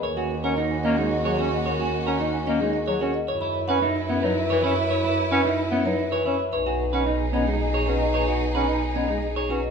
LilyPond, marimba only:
\new Staff \with { instrumentName = "Marimba" } { \time 3/4 \key fis \mixolydian \tempo 4 = 111 ais'16 gis''16 ais'16 fis''16 dis''16 gis''16 dis''16 gis'16 dis''16 gis'16 ais'16 dis''16 | ais'16 gis''16 ais'16 fis''16 dis''16 gis''16 dis''16 gis'16 dis''16 gis'16 ais'16 dis''16 | cis''16 b''16 cis''16 fis''16 e''16 b''16 e''16 b'16 e''16 b'16 cis''16 e''16 | cis''16 b''16 cis''16 fis''16 e''16 b''16 e''16 b'16 e''16 b'16 cis''16 e''16 |
b'16 gis''16 b'16 fis''16 dis''16 gis''16 dis''16 gis'16 dis''16 gis'16 b'16 dis''16 | b'16 gis''16 b'16 fis''16 dis''16 gis''16 dis''16 gis'16 dis''16 gis'16 b'16 dis''16 | }